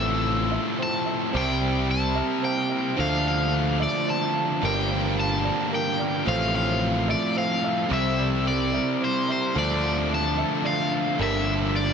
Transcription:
0.00 0.57 A1 loud
0.00 1.07 A2 medium
0.00 1.32 A2 loud
0.00 1.32 F3 loud
0.00 1.34 F3 medium
0.00 1.33 A3 loud
0.00 1.35 C4 loud
0.00 1.34 F4 loud
0.00 0.24 C5 medium
0.00 0.82 E5 loud
0.51 1.06 A4 medium
0.51 0.79 E5 medium
0.79 2.19 C4 medium
0.79 1.06 C5 medium
0.83 1.37 A5 medium
1.05 1.34 A4 medium
1.05 1.33 E5 medium
1.33 2.21 C2 loud
1.33 2.96 C3 medium
1.33 2.71 C3 medium
1.33 2.97 G3 loud
1.33 2.98 A#3 medium
1.33 2.98 C4 loud
1.33 2.98 E4 medium
1.33 2.98 E4 loud
1.33 2.98 G4 medium
1.33 1.88 C5 medium
1.33 4.61 C5 medium
1.37 1.91 G5 loud
1.61 2.99 G3 medium
1.89 2.99 E4 medium
1.89 2.41 A5 loud
2.15 2.70 A#4 medium
2.15 2.43 E5 medium
2.42 2.99 A#3 medium
2.42 2.70 C5 loud
2.42 3.00 G5 loud
2.69 2.99 A#4 medium
2.69 2.98 E5 medium
2.96 3.85 D2 loud
2.96 4.60 D3 loud
2.96 4.36 D3 medium
2.96 4.63 F3 loud
2.96 4.62 A3 loud
2.96 4.62 A3 medium
2.96 6.25 D4 medium
2.96 6.25 F4 medium
2.96 3.53 C5 medium
2.96 3.27 F5 loud
3.01 4.63 D4 loud
3.27 4.67 F3 medium
3.27 3.78 F5 loud
3.54 4.63 D4 medium
3.79 4.35 A4 medium
3.79 4.10 D5 loud
3.79 4.08 E5 loud
4.07 4.63 C4 medium
4.07 4.35 D5 loud
4.07 4.65 A5 loud
4.34 4.63 A4 medium
4.34 4.62 F5 medium
4.61 5.49 G1 loud
4.61 6.24 G2 loud
4.61 6.00 G2 medium
4.61 6.26 D3 loud
4.61 6.26 G3 loud
4.61 6.26 G3 medium
4.61 6.26 A#3 loud
4.61 6.27 D4 loud
4.61 5.17 A#4 medium
4.61 6.26 A#4 medium
4.65 5.15 G5 loud
4.90 6.28 F3 medium
5.18 6.28 F4 medium
5.18 5.70 A5 loud
5.44 6.00 A#4 medium
5.44 5.72 D5 medium
5.71 6.28 A#3 medium
5.71 5.99 A#4 loud
5.75 6.25 G5 loud
5.98 6.28 A#4 medium
5.98 6.27 D5 medium
6.25 7.14 A1 loud
6.25 7.89 A2 loud
6.25 7.89 F3 loud
6.25 7.90 A3 loud
6.25 7.92 C4 loud
6.25 6.82 C5 loud
6.25 6.55 F5 loud
6.29 7.65 A2 medium
6.29 7.92 F3 medium
6.29 11.18 C4 medium
6.29 7.91 F4 loud
6.29 7.92 A4 loud
6.55 7.92 F3 medium
6.55 7.10 F5 loud
7.08 7.63 A4 medium
7.08 7.38 D5 medium
7.08 7.36 E5 medium
7.36 8.78 C4 medium
7.36 7.64 C5 loud
7.36 7.89 F5 loud
7.63 7.92 A4 medium
7.63 7.91 E5 medium
7.89 8.78 C2 loud
7.89 9.53 C3 loud
7.89 9.29 C3 medium
7.89 9.54 G3 loud
7.89 9.55 C4 loud
7.89 9.55 E4 loud
7.89 9.55 A#4 medium
7.89 8.46 C5 medium
7.93 9.56 G3 medium
7.93 8.48 E5 medium
8.20 9.56 G3 medium
8.47 9.56 E4 medium
8.47 9.04 D5 medium
8.72 9.27 A#4 medium
8.72 9.01 E5 medium
9.01 9.56 A#3 medium
9.01 9.29 C5 loud
9.01 9.31 C5 medium
9.28 9.56 A#4 medium
9.28 9.58 C5 medium
9.28 9.56 E5 medium
9.55 10.42 D2 loud
9.55 11.18 D3 medium
9.55 10.93 D3 medium
9.55 11.20 F3 loud
9.55 11.93 F3 medium
9.55 11.20 A3 loud
9.55 11.93 D4 medium
9.55 11.19 A4 medium
9.55 10.10 C5 loud
9.55 10.14 D5 loud
9.59 11.20 D4 loud
9.83 11.23 F3 medium
10.10 11.20 D4 medium
10.15 10.66 A5 loud
10.37 10.91 A4 medium
10.37 10.65 E5 medium
10.64 11.20 C4 medium
10.64 10.92 D5 loud
10.64 11.17 F5 loud
10.91 11.20 A4 medium
10.91 11.20 F5 medium
11.18 11.93 G1 loud
11.18 11.93 G2 loud
11.18 11.93 G2 medium
11.18 11.93 D3 loud
11.18 11.93 G3 loud
11.18 11.93 A#3 medium
11.18 11.93 A#3 loud
11.18 11.93 D4 loud
11.18 11.93 G4 medium
11.18 11.74 A#4 loud
11.22 11.78 E5 loud
11.47 11.93 F3 medium
11.75 11.93 F4 medium
11.75 11.93 D5 medium

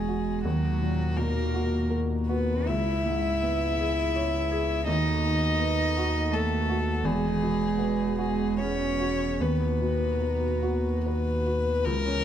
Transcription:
0.00 0.46 E1 medium
0.00 0.41 E2 soft
0.00 0.47 B2 soft
0.00 0.44 G#3 medium
0.00 0.47 G#3 soft
0.00 2.64 G#3 soft
0.00 0.08 F#4 soft
0.00 0.43 F#4 soft
0.00 0.30 G#4 soft
0.00 0.44 G#4 soft
0.00 0.45 G#4 medium
0.08 0.45 F#4 soft
0.43 2.69 D#2 medium
0.43 2.64 D#2 soft
0.43 1.18 F#3 medium
0.43 2.64 F#4 soft
0.43 1.19 F#4 medium
0.43 2.68 A#5 medium
0.82 1.40 A#2 soft
1.17 1.76 B2 soft
1.17 1.91 A#3 medium
1.17 1.91 A#4 medium
1.54 2.14 F#4 soft
1.90 2.52 A#4 soft
2.28 2.68 B3 medium
2.28 2.68 F#4 soft
2.28 2.69 B4 medium
2.66 4.83 C#2 medium
2.66 4.88 C#2 medium
2.66 6.99 B3 medium
2.66 4.85 E4 medium
2.66 4.86 G#4 medium
2.66 4.87 E5 medium
3.06 3.64 G#2 soft
3.42 4.00 B3 soft
3.79 4.37 G#4 medium
4.16 4.73 C#5 soft
4.51 4.87 G#4 medium
4.86 7.05 D#2 medium
4.86 7.00 D#2 medium
4.86 6.33 D#4 medium
4.86 9.39 F#4 medium
4.86 7.03 A4 medium
4.86 6.35 D#5 medium
5.24 5.82 D#3 soft
5.59 6.17 B3 soft
5.97 6.54 F#4 medium
6.31 7.01 A3 medium
6.31 6.90 A4 soft
6.31 7.07 A4 medium
6.69 7.04 F#4 medium
7.02 9.41 E1 medium
7.02 9.36 E2 medium
7.02 8.15 G#3 medium
7.02 11.81 B3 medium
7.02 9.40 G#4 medium
7.02 8.18 G#4 medium
7.42 8.02 B2 soft
7.78 8.43 B3 soft
8.18 8.60 G#3 medium
8.18 8.84 F#4 soft
8.18 8.59 G#4 medium
8.59 9.42 C#4 medium
8.59 9.24 G#4 soft
8.59 9.43 C#5 medium
9.00 9.40 F#4 soft
9.40 11.85 D#2 medium
9.40 11.81 D#2 medium
9.40 11.46 B3 medium
9.40 11.82 F#4 medium
9.40 11.04 B4 medium
9.40 11.86 A#5 medium
9.80 10.45 B2 soft
10.21 10.88 B3 soft
10.62 11.30 F#4 soft
11.05 11.86 B4 medium
11.05 11.71 B4 soft
11.46 11.85 F#4 soft
11.84 12.24 C#2 medium
11.84 12.24 E3 medium
11.84 12.24 B3 medium
11.84 12.24 E4 medium
11.84 12.24 G#4 medium
11.84 12.24 A#4 loud
12.06 12.24 C#4 medium

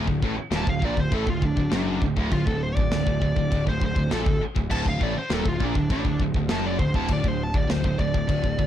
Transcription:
0.07 0.22 D1 medium
0.07 0.23 D2 medium
0.07 kick medium
0.22 0.37 A1 medium
0.22 0.36 A2 medium
0.22 kick medium
0.37 muted distorted electric guitar stroke medium
0.37 muted picked electric bass stroke soft
0.51 0.66 D#1 medium
0.51 0.66 D#2 loud
0.51 snare loud
0.51 china medium
0.56 0.69 A5 medium
0.66 0.81 D1 medium
0.66 0.80 D2 medium
0.66 0.83 F5 medium
0.66 kick medium
0.80 0.97 A#1 medium
0.80 0.95 A#2 loud
0.80 kick medium
0.85 0.99 D5 medium
0.96 1.11 D1 medium
0.96 1.11 D2 medium
0.96 kick medium
1.00 1.14 C5 medium
1.12 1.26 A1 medium
1.12 1.26 A2 loud
1.12 1.28 A4 medium
1.12 kick medium
1.12 china medium
1.26 1.41 D1 medium
1.26 1.40 D2 medium
1.26 1.45 F4 medium
1.26 kick medium
1.41 1.56 D1 medium
1.41 1.55 D2 medium
1.41 1.73 D4 medium
1.41 kick medium
1.56 1.70 D1 medium
1.56 1.70 D2 medium
1.56 kick medium
1.70 1.99 F#1 medium
1.70 2.00 F#2 loud
1.70 2.02 D4 loud
1.70 snare loud
1.70 china medium
1.74 2.02 F#2 loud
2.00 2.16 D1 medium
2.00 2.15 D2 medium
2.00 kick medium
2.06 2.18 D2 medium
2.16 2.31 D1 loud
2.16 2.31 D2 medium
2.16 kick medium
2.32 2.46 D1 medium
2.32 2.46 D2 medium
2.32 2.47 F4 loud
2.32 kick medium
2.32 china medium
2.46 2.75 D1 medium
2.46 2.71 D2 medium
2.46 2.61 A4 medium
2.46 kick medium
2.63 2.75 C5 medium
2.75 2.91 D1 medium
2.75 2.90 D2 medium
2.75 3.63 D5 medium
2.75 kick medium
2.92 3.06 D1 medium
2.92 3.05 D2 medium
2.92 snare loud
2.92 china medium
3.07 3.21 D1 medium
3.07 3.20 D2 medium
3.07 kick medium
3.21 3.36 D1 medium
3.21 3.35 D2 medium
3.21 kick medium
3.36 3.50 D1 medium
3.36 3.49 D2 medium
3.36 kick medium
3.50 3.66 D1 medium
3.50 3.65 D2 medium
3.50 kick medium
3.50 china medium
3.55 3.68 D2 medium
3.67 3.81 D1 medium
3.67 3.80 D2 medium
3.67 3.82 C5 medium
3.67 kick medium
3.81 3.96 D1 medium
3.81 3.94 D2 medium
3.81 kick medium
3.85 4.12 C5 medium
3.95 4.11 D1 medium
3.95 4.09 D2 medium
3.95 kick medium
4.09 4.25 A#1 medium
4.09 4.24 A#2 loud
4.09 4.41 A4 loud
4.09 snare loud
4.09 china medium
4.26 4.40 D1 medium
4.26 4.40 D2 medium
4.26 kick medium
4.41 muted distorted electric guitar stroke medium
4.41 muted picked electric bass stroke soft
4.55 4.70 D1 medium
4.55 4.68 D2 medium
4.55 kick medium
4.70 4.85 D1 medium
4.70 4.83 D2 loud
4.70 4.86 A5 loud
4.70 kick medium
4.70 china medium
4.70 crash medium
4.84 5.00 D1 medium
4.84 4.98 D2 medium
4.84 kick medium
4.89 5.03 F5 medium
4.99 5.15 A1 loud
4.99 5.14 A2 medium
4.99 kick medium
5.03 5.16 D5 medium
5.14 5.31 C5 medium
5.14 muted distorted electric guitar stroke medium
5.14 muted picked electric bass stroke soft
5.30 5.45 D#1 loud
5.30 5.44 D#2 loud
5.30 snare loud
5.30 china medium
5.34 5.47 A4 medium
5.44 5.60 D1 medium
5.44 5.59 D2 medium
5.44 5.65 F4 medium
5.44 kick medium
5.60 5.74 A#1 loud
5.60 5.74 A#2 loud
5.60 kick medium
5.65 5.91 D4 medium
5.75 5.89 D1 medium
5.75 5.90 D2 medium
5.75 kick medium
5.90 6.04 A1 medium
5.90 6.05 A2 loud
5.90 6.20 D4 loud
5.90 kick medium
5.90 china medium
6.05 6.19 D1 medium
6.05 6.19 D2 medium
6.05 kick medium
6.20 6.34 D1 medium
6.20 6.35 D2 medium
6.20 kick medium
6.34 6.48 D1 medium
6.34 6.50 D2 medium
6.34 kick medium
6.49 6.78 F#1 medium
6.49 6.79 F#2 loud
6.49 6.65 A5 loud
6.49 snare loud
6.49 china medium
6.66 6.79 D5 loud
6.79 6.93 D1 medium
6.79 6.95 D2 medium
6.79 6.94 C5 medium
6.79 kick medium
6.94 7.08 D1 medium
6.94 7.09 D2 loud
6.94 7.10 A5 loud
6.94 kick medium
7.08 7.23 D1 medium
7.08 7.24 D2 medium
7.08 kick medium
7.08 china medium
7.13 7.28 D5 loud
7.24 7.52 D1 medium
7.24 7.49 D2 medium
7.24 7.41 C5 medium
7.24 kick medium
7.43 7.56 A5 loud
7.54 7.68 D1 medium
7.54 7.69 D2 medium
7.54 7.69 D5 medium
7.54 kick medium
7.69 7.83 D1 medium
7.69 7.84 D2 medium
7.69 7.99 C5 medium
7.69 snare loud
7.69 china medium
7.84 7.98 D1 medium
7.84 7.99 D2 medium
7.84 kick medium
7.99 8.13 D1 medium
7.99 8.14 D2 medium
7.99 8.67 D5 loud
7.99 kick medium
8.14 8.28 D1 medium
8.14 8.28 D2 medium
8.14 kick medium
8.29 8.43 D1 medium
8.29 8.44 D2 medium
8.29 kick medium
8.29 china medium
8.44 8.58 D1 medium
8.44 8.58 D2 medium
8.44 kick medium
8.59 8.67 D1 medium
8.59 8.67 D2 medium
8.59 kick medium

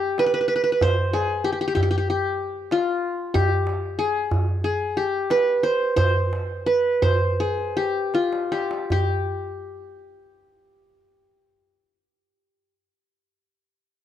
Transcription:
0.00 1.12 G4 medium
0.18 0.26 B4 medium
0.18 darbuka tek medium
0.26 0.33 B4 medium
0.34 0.40 B4 medium
0.41 0.48 B4 medium
0.48 0.55 B4 medium
0.56 0.63 B4 medium
0.64 0.72 B4 medium
0.72 0.88 B4 medium
0.81 1.88 C5 loud
0.81 darbuka dum medium
1.13 1.50 G#4 medium
1.13 darbuka tek medium
1.44 1.52 G4 medium
1.52 1.61 G4 medium
1.61 1.67 G4 medium
1.68 1.75 G4 medium
1.75 1.82 G4 medium
1.75 darbuka dum medium
1.83 1.90 G4 medium
1.91 1.97 G4 medium
1.98 2.09 G4 medium
2.09 3.34 G4 medium
2.09 darbuka ka soft
2.71 4.07 F4 medium
2.71 darbuka tek medium
3.34 4.05 G4 medium
3.34 darbuka dum medium
3.67 darbuka tek medium
3.99 4.64 G#4 medium
4.31 darbuka dum medium
4.64 5.03 G#4 medium
4.64 darbuka ka soft
4.97 6.22 G4 medium
5.30 5.69 B4 medium
5.30 darbuka tek medium
5.63 5.96 C5 medium
5.96 6.72 C5 loud
5.96 darbuka dum medium
6.33 darbuka tek medium
6.66 7.08 B4 medium
7.02 8.08 C5 medium
7.02 darbuka dum medium
7.40 7.83 G#4 medium
7.57 darbuka ka soft
7.77 8.51 G4 medium
8.14 9.49 F4 medium
8.14 darbuka tek medium
8.33 darbuka ka medium
8.52 8.91 G4 medium
8.52 darbuka tek medium
8.71 darbuka ka medium
8.90 12.73 G4 medium
8.90 darbuka dum medium

